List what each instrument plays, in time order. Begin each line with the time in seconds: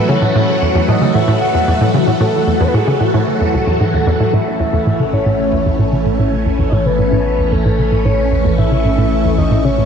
Already playing: string machine A2 E3 F#3 A3 F#4
0.08 synth arpeggio sound C#3, soft synth lead C#5
0.22 synth arpeggio sound A2
0.36 synth arpeggio sound A2
0.62 synth arpeggio sound E2
0.75 synth arpeggio sound E2
0.88 synth arpeggio sound A2, soft synth lead D#5
1.01 synth arpeggio sound C#3
1.15 synth arpeggio sound A2, soft synth lead E5
1.28 synth arpeggio sound A2
1.41 soft synth lead F#5
1.55 synth arpeggio sound E2
1.68 synth arpeggio sound E2
1.81 synth arpeggio sound A2
1.94 synth arpeggio sound C#3
2.07 synth arpeggio sound A2
2.21 synth arpeggio sound A2, soft synth lead A4
2.47 synth arpeggio sound E2
2.61 synth arpeggio sound E2, soft synth lead B4 C#5
2.68 soft synth lead B4
2.74 synth arpeggio sound A2, soft synth lead G#4
2.88 synth arpeggio sound C#3
3.01 synth arpeggio sound A2, soft synth lead A4
3.14 synth arpeggio sound A2
3.41 synth arpeggio sound E2
3.54 synth arpeggio sound C#2
3.67 synth arpeggio sound E2
3.81 synth arpeggio sound G#2
3.94 synth arpeggio sound D#2
4.07 synth arpeggio sound E2, soft synth lead A4
4.20 synth arpeggio sound A2
4.33 sub bass A1, synth arpeggio sound A2, string machine E3 A3 C#4, soft synth lead E5
4.60 synth arpeggio sound E2
4.73 synth arpeggio sound E2
4.87 synth arpeggio sound A2
5.00 synth arpeggio sound C#3
5.13 synth arpeggio sound A2, soft synth lead C#5
5.26 synth arpeggio sound A2
5.53 synth arpeggio sound E2
5.66 synth arpeggio sound E2
5.79 synth arpeggio sound A2
5.93 synth arpeggio sound C#3
6.06 synth arpeggio sound A2
6.19 synth arpeggio sound A2
6.46 synth arpeggio sound E2
6.59 synth arpeggio sound E2
6.70 synth arpeggio sound A2, soft synth lead C#5 D#5
6.86 synth arpeggio sound C#3, soft synth lead B4
6.99 synth arpeggio sound A2
7.12 synth arpeggio sound A2
7.39 synth arpeggio sound E2
7.52 synth arpeggio sound E2, soft synth lead A4
7.66 synth arpeggio sound A2
7.79 synth arpeggio sound C#3
7.92 synth arpeggio sound A2
8.05 synth arpeggio sound A2, soft synth lead C#5
8.32 synth arpeggio sound E2
8.45 synth arpeggio sound E2
8.58 synth arpeggio sound A2, soft synth lead E5
8.72 synth arpeggio sound C#3
8.85 synth arpeggio sound A2
8.98 synth arpeggio sound A2
9.25 synth arpeggio sound E2
9.38 synth arpeggio sound E2, soft synth lead D#5
9.51 synth arpeggio sound A2
9.65 synth arpeggio sound C#3, soft synth lead C#5
9.78 synth arpeggio sound A2